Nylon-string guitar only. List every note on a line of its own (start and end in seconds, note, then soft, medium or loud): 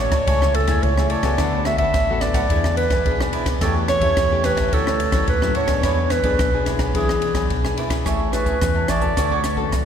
0.00 0.25 A2 medium
0.00 0.24 A3 medium
0.00 0.24 C#4 medium
0.00 0.24 F#4 medium
0.28 0.81 C#3 medium
0.28 0.65 A3 soft
0.28 0.65 E4 medium
0.28 0.65 G#4 medium
0.68 0.92 A3 medium
0.68 0.92 E4 medium
0.68 0.93 G#4 medium
0.84 1.36 C#3 medium
0.99 1.21 A3 medium
0.99 1.21 E4 medium
0.99 1.22 G#4 medium
1.24 1.66 B3 medium
1.24 1.66 F#4 medium
1.24 1.66 A4 medium
1.39 1.92 D3 medium
1.67 2.04 B3 soft
1.67 2.04 F#4 medium
1.67 2.04 A4 medium
1.96 2.48 A2 medium
2.10 2.47 B3 medium
2.10 2.47 F#4 medium
2.10 2.47 A4 medium
2.51 3.03 E3 medium
2.51 2.86 B3 medium
2.51 2.86 D4 medium
2.51 2.87 G#4 medium
3.06 3.59 B2 medium
3.06 3.57 B3 medium
3.06 3.57 D4 medium
3.06 3.58 G#4 medium
3.61 4.14 E3 medium
3.61 3.99 A3 medium
3.61 3.99 C#4 medium
3.61 3.99 G4 medium
4.02 4.26 A3 medium
4.02 4.26 C#4 medium
4.02 4.26 G4 medium
4.17 4.70 E3 medium
4.32 4.69 A3 medium
4.32 4.69 C#4 medium
4.32 4.69 G4 medium
4.72 5.25 D3 medium
4.72 4.99 F#3 medium
4.72 4.99 C#4 medium
4.72 4.99 E4 medium
5.12 5.37 F#3 medium
5.12 5.37 C#4 medium
5.12 5.37 E4 medium
5.28 5.81 A2 medium
5.42 5.66 F#3 medium
5.42 5.66 C#4 medium
5.42 5.66 E4 medium
5.68 6.20 B3 medium
5.68 6.20 D4 medium
5.68 6.20 G#4 medium
5.84 6.37 E3 medium
6.24 6.48 B3 medium
6.24 6.49 D4 medium
6.24 6.49 G#4 medium
6.40 6.93 B2 medium
6.54 6.91 B3 medium
6.54 6.91 D4 medium
6.54 6.91 G#4 medium
6.95 7.48 E3 medium
6.95 7.32 B3 medium
6.95 7.32 D4 medium
6.95 7.33 G#4 medium
7.35 7.59 B3 medium
7.35 7.59 D4 medium
7.35 7.60 G#4 medium
7.51 8.04 B2 medium
7.66 7.89 B3 medium
7.66 7.89 D4 medium
7.66 7.89 G#4 medium
7.90 8.32 C#4 medium
7.90 8.32 E4 medium
7.90 8.33 G#4 medium
8.06 8.59 A3 soft
8.33 8.57 C#4 medium
8.33 8.57 E4 soft
8.33 8.57 G#4 medium
8.61 9.14 E3 medium
8.61 8.88 C#4 medium
8.61 8.88 E4 medium
8.61 8.88 G#4 medium
9.02 9.54 F#4 medium
9.02 9.54 A4 medium
9.17 9.70 D3 medium
9.57 9.81 C#4 medium
9.57 9.82 F#4 medium
9.57 9.82 A4 medium
9.73 9.85 A2 medium